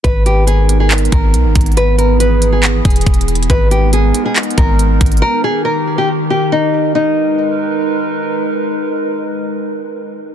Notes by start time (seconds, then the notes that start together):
0.04 G#1 G#3 B3 D#4 A#4 B4, kick, closed hi-hat
0.26 G4, closed hi-hat
0.47 G#4, closed hi-hat
0.69 closed hi-hat
0.80 G#4
0.91 clap, closed hi-hat
0.98 closed hi-hat
1.05 closed hi-hat
1.12 G#1 A#4, kick, closed hi-hat
1.34 B1, closed hi-hat
1.45 G#1
1.55 G#1, kick, closed hi-hat
1.61 closed hi-hat
1.66 closed hi-hat
1.72 closed hi-hat
1.77 E3 E4 G#4 B4, closed hi-hat
1.98 A#4, closed hi-hat
2.20 B4, closed hi-hat
2.42 closed hi-hat
2.52 G#4
2.63 clap, closed hi-hat
2.85 E1 G#4, kick, closed hi-hat
2.90 closed hi-hat
2.96 closed hi-hat
3.01 closed hi-hat
3.06 E1, kick, closed hi-hat
3.14 closed hi-hat
3.21 closed hi-hat
3.28 closed hi-hat
3.35 closed hi-hat
3.43 closed hi-hat
3.50 G#1 G#3 B3 D#4 A#4 B4, kick, closed hi-hat
3.71 G4, closed hi-hat
3.93 G#4, closed hi-hat
4.14 closed hi-hat
4.25 G#4
4.36 clap, closed hi-hat
4.43 closed hi-hat
4.50 closed hi-hat
4.57 G#1 A#4, kick, closed hi-hat
4.79 closed hi-hat
5.01 G#1, kick, closed hi-hat
5.06 closed hi-hat
5.12 closed hi-hat
5.17 closed hi-hat
5.22 D#3 G4 A#4
5.44 G#4
5.65 A#4
5.98 G4
6.30 G4
6.52 D#4
6.95 G#3 D#4 A#4 B4